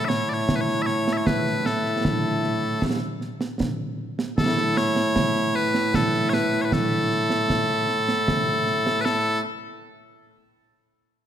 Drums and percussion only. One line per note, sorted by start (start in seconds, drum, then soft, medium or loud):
0.10 snare medium
0.49 concert bass drum medium
0.49 snare loud
0.68 snare soft
0.88 snare soft
1.08 snare medium
1.27 concert bass drum medium
1.27 snare loud
1.47 snare soft
1.66 snare medium
1.86 snare soft
2.05 concert bass drum medium
2.05 snare loud
2.44 snare soft
2.82 concert bass drum medium
2.82 snare medium
3.21 snare soft
3.41 snare medium
3.60 concert bass drum medium
3.60 snare medium
4.19 snare medium
4.38 concert bass drum medium
4.38 snare loud
4.57 snare medium
4.77 snare medium
4.96 snare medium
5.16 concert bass drum medium
5.16 snare medium
5.35 snare soft
5.55 snare soft
5.74 snare medium
5.94 concert bass drum medium
5.94 snare medium
6.14 snare soft
6.33 snare medium
6.53 snare soft
6.72 concert bass drum medium
6.72 snare loud
7.11 snare soft
7.30 snare medium
7.50 concert bass drum soft
7.50 snare medium
7.89 snare soft
8.09 snare medium
8.28 concert bass drum medium
8.28 snare medium
8.67 snare soft
8.87 snare medium
9.06 snare medium